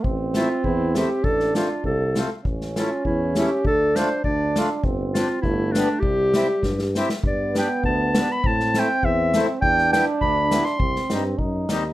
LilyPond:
<<
  \new Staff \with { instrumentName = "Clarinet" } { \time 2/4 \key c \major \tempo 4 = 100 r8 f'8 e'8 g'8 | a'8 f'8 a'8. r16 | r8 f'8 e'8 g'8 | a'8 c''8 d''8. r16 |
r8 f'8 e'8 d'8 | g'4. r8 | \key g \major d''8 g''8 a''8. b''16 | a''8 g''8 e''8. r16 |
g''8 g''8 b''8. c'''16~ | c'''8. r4 r16 | }
  \new Staff \with { instrumentName = "Accordion" } { \time 2/4 \key c \major r8 <a c' e'>8 r8 <a c' e'>8 | r8 <a c' f'>8 r8 <a c' f'>8 | r8 <a cis' e'>8 r8 <a cis' e'>8 | r8 <a d' f'>8 r8 <a d' f'>8 |
r8 <c' d' g'>8 r8 <b d' g'>8 | r8 <c' e' g'>8 r8 <c' e' g'>8 | \key g \major r8 <b d' g'>8 r8 <b d' g'>8 | r8 <a c' e'>8 r8 <a c' e'>8 |
r8 <g b e'>8 r8 <g b e'>8 | r8 <g c' ees'>8 r8 <g c' ees'>8 | }
  \new Staff \with { instrumentName = "Euphonium" } { \time 2/4 \key c \major c'2 | d'4. r8 | cis'2 | d'4 d'4 |
c'4 a4 | g4. r8 | \key g \major b2 | c'2 |
d'2 | c'4 ees'4 | }
  \new Staff \with { instrumentName = "Tuba" } { \clef bass \time 2/4 \key c \major a,,4 e,4 | a,,4 c,4 | a,,4 e,4 | d,4 d,4 |
g,,4 g,,4 | c,4 g,4 | \key g \major g,4 d,4 | a,4 e,4 |
e,4 d,4 | c,8 g,8 fis,8 ees,8 | }
  \new DrumStaff \with { instrumentName = "Drums" } \drummode { \time 2/4 bd8 <hhp sn>8 bd8 <hhp sn>8 | bd16 sn16 <hhp sn>8 bd8 <hhp sn>8 | bd16 sn16 <hhp sn>8 bd8 <hhp sn>8 | bd8 <hhp sn>8 bd8 <hhp sn>8 |
bd8 <hhp sn>8 bd8 <hhp sn>8 | bd8 <hhp sn>8 <bd sn>16 sn16 <hhp sn>16 sn16 | bd8 <hhp sn>8 bd8 <hhp sn>8 | bd16 sn16 <hhp sn>8 bd8 <hhp sn>8 |
bd16 sn16 <hhp sn>8 bd8 <hhp sn>16 sn16 | bd16 sn16 <hhp sn>8 bd8 <hhp sn>8 | }
>>